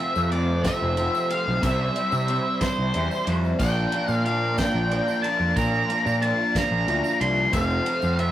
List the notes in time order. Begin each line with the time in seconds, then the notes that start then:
Already playing: F2 C3 A3 C4 F4 C5 E5
0.00 F3 A3
0.16 F2, tambourine
0.30 C3 F3 A3 C4 D5, ride
0.63 F3 A3 C4 E5, kick, snare, ride, tambourine
0.82 F1
0.96 C3 F3 A3 C4, ride
1.15 tambourine
1.30 F3 A3 C4 F5, ride
1.47 B1
1.62 C2 C3 G3 C4 E4 E5, kick, ride, tambourine
1.96 G3 C4 E4, ride
2.12 C3, tambourine
2.28 C3 G3 C4 E4, ride
2.61 G3 C4 E4 C5, kick, snare, ride, tambourine
2.78 C2
2.94 E2 C3 G3 C4 E4, ride, tambourine
3.11 tambourine
3.26 F2 G3 C4 E4, ride
3.44 tambourine
3.59 A#1 A#2 F3 A#3 D4 F4 D5 G5, kick, crash, tambourine
3.92 F3 A#3 D4, ride
4.08 A#2 F5, tambourine
4.25 A#2 F3 A#3 D4 F5, ride
4.58 F3 A#3 D4 G5, kick, snare, ride, tambourine
4.74 A#1
4.90 A#2 F3 A#3 D4, ride
5.08 tambourine
5.22 A#3 D4 A5, ride
5.27 F3
5.40 F2
5.56 A#2 F3 A#3 D4 A#5, kick, ride, tambourine
5.74 tambourine
5.88 F3 A#3 D4, ride
6.06 A#2, tambourine
6.21 A#2 F3 A#3 D4 A5, ride
6.54 F3 A#3 D4 A#5, kick, snare, ride, tambourine
6.71 A#1
6.86 D2 A#2 F3 A#3 D4, ride
7.04 tambourine
7.19 C2 F3 A#3 D4 C6, ride
7.52 F1 F2 C3 F3 A3 C4 C5 F5, kick, ride, tambourine
7.70 tambourine
7.85 F3 A3 C4, ride
8.02 F2, tambourine
8.18 C3 F3 A3 C4 E5, ride